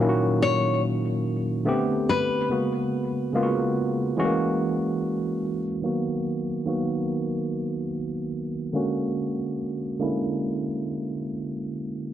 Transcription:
Already playing: tine electric piano C#4 F#4
0.00 tine electric piano A#2 D#3 F#3 A#3 C#4 E4
0.09 tine electric piano F#4
0.42 nylon-string guitar C#5
1.65 tine electric piano D3 A3 B3 C4 G4
2.09 nylon-string guitar B4
2.49 tine electric piano C#3 G#3 A#3 B3 F#4
3.33 tine electric piano C#3 G#3 A#3 B3 F4
3.43 tine electric piano F#4
4.17 tine electric piano E3 G#3 A3 C#4 F#4
4.25 tine electric piano A#3
5.82 tine electric piano D#3 F#3 A#3 B3 F#4
6.66 tine electric piano D#3 F#3 A#3 B3 F#4
8.73 tine electric piano D3 G#3 A#3 C#4 F#4
9.99 tine electric piano D3 G#3 A#3 C#4 E4

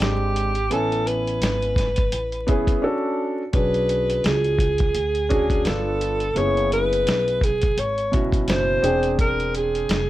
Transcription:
Already playing: grand piano G#3 C4 D4 G4
0.00 upright bass G#1, alto saxophone G4, snare, closed hi-hat
0.36 closed hi-hat
0.55 closed hi-hat
0.70 upright bass A1, grand piano B3 C#4 E4 G#5, alto saxophone A4, closed hi-hat
0.92 closed hi-hat
1.07 alto saxophone B4, closed hi-hat
1.28 closed hi-hat
1.42 upright bass G#1, snare, closed hi-hat
1.62 closed hi-hat
1.76 kick, snare, closed hi-hat
1.96 kick, closed hi-hat
2.12 upright bass A1, closed hi-hat
2.32 closed hi-hat
2.47 grand piano B3 C#4 E4 G#4, kick, closed hi-hat
2.67 muted upright bass stroke, kick, closed hi-hat
2.82 grand piano C#4 D4 F#4 A4
3.53 upright bass B1, grand piano C#4 D4 F#4 G#4, alto saxophone B4, kick, closed hi-hat
3.74 closed hi-hat
3.89 closed hi-hat
4.10 closed hi-hat
4.24 upright bass C#2, alto saxophone G#4, snare, closed hi-hat
4.44 closed hi-hat
4.59 kick, closed hi-hat
4.78 kick, closed hi-hat
4.95 upright bass D2, closed hi-hat
5.15 closed hi-hat
5.29 grand piano C#4 D4 F#4 G#4, kick, closed hi-hat
5.50 kick, closed hi-hat
5.65 upright bass G1, grand piano B3 D4 F4 A4, alto saxophone A4, snare, closed hi-hat
6.01 closed hi-hat
6.20 closed hi-hat
6.35 upright bass F#1, grand piano B3 C#4 E4 G#4, alto saxophone C#5, closed hi-hat
6.57 closed hi-hat
6.72 alto saxophone B4, closed hi-hat
6.93 closed hi-hat
7.07 upright bass B1, snare, closed hi-hat
7.28 closed hi-hat
7.41 alto saxophone G#4, kick, closed hi-hat
7.62 kick, closed hi-hat
7.77 upright bass G#1, alto saxophone C#5, closed hi-hat
7.98 closed hi-hat
8.12 grand piano B2 C#4 E4 F#4, kick, closed hi-hat
8.32 kick, closed hi-hat
8.48 upright bass F#1, alto saxophone C5, snare, closed hi-hat
8.82 upright bass E1, grand piano C4 D4 G#4 G5, closed hi-hat
9.03 closed hi-hat
9.19 alto saxophone A#4, kick, closed hi-hat
9.40 closed hi-hat
9.55 alto saxophone G#4, closed hi-hat
9.75 closed hi-hat
9.89 upright bass F1, snare, closed hi-hat

